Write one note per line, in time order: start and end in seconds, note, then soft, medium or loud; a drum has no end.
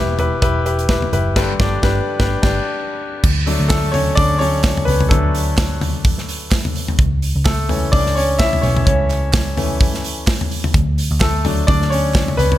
0.00 0.39 E1 medium
0.00 0.15 B2 medium
0.00 0.19 E4 medium
0.00 0.19 G4 medium
0.00 0.19 B4 loud
0.19 0.40 E4 medium
0.19 0.41 G4 medium
0.19 0.41 B4 medium
0.19 closed hi-hat medium
0.19 floor tom medium
0.42 1.09 E1 medium
0.42 0.64 E4 loud
0.42 0.64 G4 medium
0.42 0.64 B4 loud
0.42 kick loud
0.42 closed hi-hat medium
0.66 0.88 E4 medium
0.66 0.88 G4 medium
0.66 0.88 B4 medium
0.66 closed hi-hat medium
0.79 closed hi-hat medium
0.89 1.11 E4 medium
0.89 1.11 G4 medium
0.89 1.12 B4 medium
0.89 kick medium
0.89 snare loud
0.89 closed hi-hat medium
1.02 floor tom medium
1.12 1.34 F#1 medium
1.12 1.35 E4 medium
1.12 1.35 G4 medium
1.12 1.35 B4 medium
1.12 closed hi-hat medium
1.36 1.53 G1 medium
1.36 1.53 G2 medium
1.36 1.53 D3 medium
1.36 1.52 D4 medium
1.36 1.53 G4 medium
1.36 1.53 B4 medium
1.36 kick loud
1.36 snare medium
1.36 crash medium
1.60 1.76 G1 medium
1.60 1.76 D4 medium
1.60 1.76 G4 medium
1.60 1.76 D5 medium
1.60 kick loud
1.60 snare loud
1.83 1.99 G1 medium
1.83 1.99 D4 medium
1.83 2.00 G4 medium
1.83 2.00 B4 medium
1.83 kick loud
1.83 snare loud
2.19 2.35 G1 medium
2.19 2.35 D4 medium
2.19 2.35 G4 medium
2.19 2.35 B4 medium
2.19 kick loud
2.19 snare loud
2.42 2.59 G1 medium
2.42 2.58 D4 medium
2.42 2.58 G4 medium
2.42 kick loud
2.42 snare loud
2.42 crash medium
3.24 3.58 D2 loud
3.24 kick loud
3.24 crash medium
3.46 3.79 F#3 medium
3.46 3.69 A3 medium
3.46 3.80 D4 medium
3.46 hi-hat pedal medium
3.46 open hi-hat medium
3.60 4.15 D2 medium
3.69 3.93 A3 medium
3.69 3.94 A4 medium
3.69 kick loud
3.69 snare loud
3.69 clap medium
3.69 hi-hat pedal medium
3.69 open hi-hat medium
3.92 4.16 C#4 medium
3.92 4.17 C#5 loud
3.92 floor tom medium
3.92 hi-hat pedal medium
3.92 open hi-hat medium
4.15 4.84 D2 loud
4.15 4.39 D4 medium
4.15 4.41 D5 loud
4.15 kick loud
4.15 hi-hat pedal medium
4.15 open hi-hat medium
4.38 4.62 F#3 soft
4.38 4.62 A3 soft
4.38 4.85 C#4 medium
4.38 4.62 D4 medium
4.38 4.88 C#5 loud
4.38 hi-hat pedal medium
4.38 open hi-hat medium
4.64 kick loud
4.64 snare loud
4.64 clap medium
4.64 hi-hat pedal medium
4.64 open hi-hat medium
4.77 floor tom medium
4.85 5.10 C#2 medium
4.85 4.94 B3 medium
4.85 4.91 B4 medium
4.85 hi-hat pedal medium
4.85 open hi-hat medium
5.00 floor tom medium
5.09 6.95 D2 medium
5.09 5.43 F#3 medium
5.09 5.55 A3 medium
5.09 5.44 D4 medium
5.09 5.54 A4 medium
5.09 kick loud
5.09 hi-hat pedal medium
5.09 open hi-hat medium
5.34 hi-hat pedal medium
5.34 open hi-hat medium
5.58 kick loud
5.58 snare loud
5.58 clap medium
5.58 hi-hat pedal medium
5.58 open hi-hat medium
5.81 floor tom medium
5.81 hi-hat pedal medium
5.81 open hi-hat medium
6.04 kick loud
6.04 hi-hat pedal medium
6.04 open hi-hat medium
6.18 snare soft
6.28 hi-hat pedal medium
6.28 open hi-hat medium
6.51 kick loud
6.51 snare loud
6.51 clap medium
6.51 hi-hat pedal medium
6.51 open hi-hat medium
6.65 floor tom medium
6.75 hi-hat pedal medium
6.75 open hi-hat medium
6.88 floor tom medium
6.99 7.33 C#2 loud
6.99 kick loud
6.99 hi-hat pedal medium
6.99 open hi-hat medium
7.22 hi-hat pedal medium
7.22 open hi-hat medium
7.36 7.90 C#2 loud
7.45 7.68 A3 medium
7.45 7.94 A4 medium
7.45 kick loud
7.45 snare loud
7.45 clap medium
7.45 hi-hat pedal medium
7.45 open hi-hat medium
7.69 8.01 E3 medium
7.69 8.02 A3 medium
7.69 8.02 C#4 medium
7.69 floor tom medium
7.69 hi-hat pedal medium
7.69 open hi-hat medium
7.92 8.60 C#2 loud
7.92 8.15 D4 medium
7.92 8.16 D5 loud
7.92 kick loud
7.92 hi-hat pedal medium
7.92 open hi-hat loud
8.06 snare soft
8.15 8.39 C#4 medium
8.15 8.40 C#5 medium
8.15 hi-hat pedal medium
8.15 open hi-hat medium
8.38 8.62 E4 medium
8.38 8.63 E5 loud
8.38 kick loud
8.38 snare loud
8.38 clap medium
8.38 hi-hat pedal medium
8.38 open hi-hat medium
8.53 floor tom medium
8.62 8.85 B1 medium
8.62 8.84 E3 soft
8.62 8.84 A3 soft
8.62 8.69 C#4 medium
8.62 8.67 C#5 loud
8.62 hi-hat pedal medium
8.62 open hi-hat medium
8.77 floor tom medium
8.86 10.70 C#2 loud
8.86 9.54 C#4 medium
8.86 9.52 C#5 medium
8.86 kick loud
8.86 hi-hat pedal medium
8.86 open hi-hat medium
9.10 clap medium
9.10 hi-hat pedal medium
9.10 open hi-hat medium
9.33 kick loud
9.33 snare loud
9.33 clap medium
9.33 hi-hat pedal medium
9.33 open hi-hat medium
9.57 10.24 E3 medium
9.57 10.24 A3 medium
9.57 10.24 C#4 medium
9.57 floor tom medium
9.57 hi-hat pedal medium
9.57 open hi-hat medium
9.81 kick loud
9.81 hi-hat pedal medium
9.81 open hi-hat medium
9.94 snare soft
10.04 hi-hat pedal medium
10.04 open hi-hat medium
10.27 kick loud
10.27 snare loud
10.27 clap medium
10.27 hi-hat pedal medium
10.27 open hi-hat medium
10.41 floor tom medium
10.51 hi-hat pedal medium
10.51 open hi-hat medium
10.64 floor tom medium
10.74 11.08 D2 medium
10.74 kick loud
10.74 hi-hat pedal medium
10.74 open hi-hat medium
10.98 hi-hat pedal medium
10.98 open hi-hat medium
11.11 11.65 D2 medium
11.20 11.43 A3 medium
11.20 11.69 A4 medium
11.20 kick loud
11.20 snare loud
11.20 clap medium
11.20 hi-hat pedal medium
11.20 open hi-hat medium
11.44 12.11 F#3 medium
11.44 12.12 A3 medium
11.44 11.67 D4 medium
11.44 floor tom medium
11.44 hi-hat pedal medium
11.44 open hi-hat medium
11.67 12.35 D2 loud
11.67 11.90 D4 medium
11.67 11.92 D5 loud
11.67 kick loud
11.67 hi-hat pedal medium
11.67 open hi-hat loud
11.82 snare soft
11.90 12.36 C#4 medium
11.90 12.39 C#5 loud
11.90 hi-hat pedal medium
11.90 open hi-hat medium
12.14 kick loud
12.14 snare loud
12.14 clap medium
12.14 hi-hat pedal medium
12.14 open hi-hat medium
12.28 floor tom medium
12.37 12.58 C#2 medium
12.37 12.58 B3 medium
12.37 12.58 B4 medium
12.37 hi-hat pedal medium
12.37 open hi-hat medium
12.52 floor tom medium